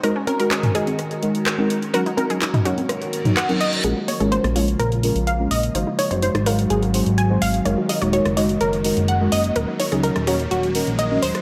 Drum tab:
HH |x-xxxxxxxxxxx-xx|xxxxxxxxxxxxxxxx|x-oxxxoxxxoxx-ox|x-oxxxoxxxoxx-ox|
CP |----x-------x---|----x-------x---|----------------|----------------|
SD |r---r---r---r---|r---r---r---r---|-----r----------|-----r----------|
T2 |-----o----------|-----o-----o----|----------------|----------------|
CG |--o----o-----o--|--o----o-----o--|----------------|----------------|

HH |x-oxxxoxxxoxx-ox|x-oxxxoxxxoxx-ox|
CP |----------------|----------------|
SD |-----r----------|-----r---------r|
T2 |----------------|----------------|
CG |----------------|----------------|